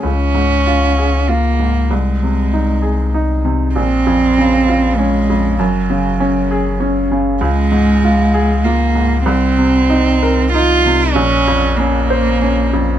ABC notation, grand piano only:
X:1
M:3/4
L:1/8
Q:1/4=97
K:Db
V:1 name="Grand piano" clef=bass
D,, A,, F A F A,, | C,, C, E A E C, | B,,, F,, D, F D F,, | G,, D, D A D D, |
D,, A,, F A F A,, | C,, C, E B E C, | B,,, F,, D c D F,, |]